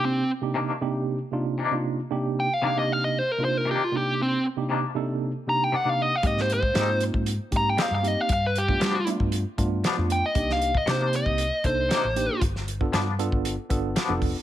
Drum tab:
HH |----------------|----------------|----------------|x-x-x-x-x-x-x-x-|
SD |----------------|----------------|----------------|-o--o-------o---|
BD |----------------|----------------|----------------|o--o---o--o-----|

HH |x-x-x-x-x-x-x-x-|x-x-x-x-x-x-x-x-|x-x-x-x-x-x-x-o-|
SD |----o-------o---|-o--o-------o---|-o--o-------o---|
BD |o--o---o--o-----|o--o---o--o-----|o--o---o--o---o-|